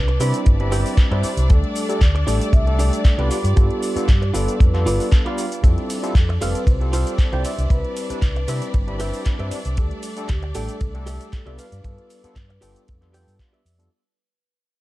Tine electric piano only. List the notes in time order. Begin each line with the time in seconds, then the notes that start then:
0.20 G3 C4 D4 E4 B5
0.59 G3 C4 D4 E4 B5
1.11 G3 C4 D4 E4 D5
1.49 G3 A3 D4 G4 A4
1.89 G3 A3 D4 G4 A4
2.27 G3 A3 D4 G4 A4
2.66 G3 A3 D4 G4 A4
3.18 G3 B3 D4 F4 D5
3.56 G3 B3 D4 F4 A4
3.96 G3 B3 D4 F4 A4
4.33 G3 B3 D4 F4 A4
4.74 G3 B3 D4 F4 A4
5.25 G3 B3 D4 F4 D5
5.63 G3 C4 E4 F4 A4
6.03 G3 C4 E4 F4 A4
6.41 G3 C4 F4 A4
6.80 G3 C4 F4 A4
7.32 G3 C4 D4 E4 D5
7.70 G3 C4 D4 E4 B5
8.09 G3 C4 D4 E4 B4
8.47 G3 C4 D4 E4 B5
8.87 G3 C4 D4 E4 B5
9.39 G3 C4 D4 E4 D5
9.77 G3 A3 D4 G4 A4
10.17 G3 A3 D4 G4 A4
10.55 G3 A3 D4 G4 A4
10.94 G3 A3 D4 G4 A4
11.46 G3 B3 D4 F4 D5
11.84 G3 B3 D4 F4 A4
12.23 G3 B3 D4 F4 A4
12.62 G3 B3 D4 F4 A4
13.01 G3 B3 D4 F4 A4
13.39 G3 B3 D4 F4 D5
13.78 G3 B3 D4 F4 A4